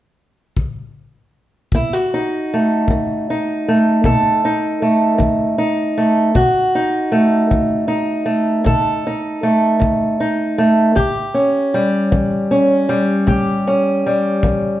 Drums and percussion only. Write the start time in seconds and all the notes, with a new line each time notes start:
0.57 kick
1.72 kick
2.88 kick
4.04 kick
5.20 kick
6.35 kick
7.51 kick
8.66 kick
9.82 kick
10.97 kick
12.12 kick
13.28 kick
14.43 kick